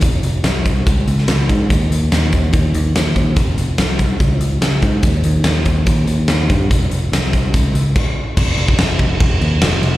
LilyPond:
<<
  \new Staff \with { instrumentName = "Picked electric bass" } { \clef bass \time 4/4 \key f \minor \tempo 4 = 144 f,,8 f,,8 c,4 des,8 des,8 des,8 aes,8 | ees,8 ees,8 ees,8 ees,8 ees,8 ees,8 ees,8 ees,8 | f,,8 f,,8 c,4 des,8 des,8 des,8 aes,8 | ees,8 ees,8 ees,8 ees,8 ees,8 ees,8 ees,8 g,8 |
f,,8 f,,8 c,4 des,8 des,8 r4 | f,,8 f,,8 f,,8 f,,8 f,,8 ees,8 f,,8 f,,8 | }
  \new DrumStaff \with { instrumentName = "Drums" } \drummode { \time 4/4 <hh bd>8 hh8 <hh sn>8 <hh bd>8 <hh bd>8 hh16 sn16 <hh sn>8 <hh bd>8 | <hh bd>8 hh8 <hh sn>8 <hh bd>8 <hh bd>8 hh8 <hh sn>8 <hh bd>8 | <hh bd>8 hh8 <hh sn>8 <hh bd>8 <hh bd>8 hh8 <hh sn>8 <hh bd>8 | <hh bd>8 hh8 <hh sn>8 <hh bd>8 <hh bd>8 hh8 <hh sn>8 <hh bd>8 |
<hh bd>8 hh8 <hh sn>8 <hh bd>8 <hh bd>8 hh8 <cymc bd>4 | <cymc bd>8 cymc16 bd16 <cymc sn>8 <cymc bd>8 <cymc bd>8 cymc8 <cymc sn>8 cymc8 | }
>>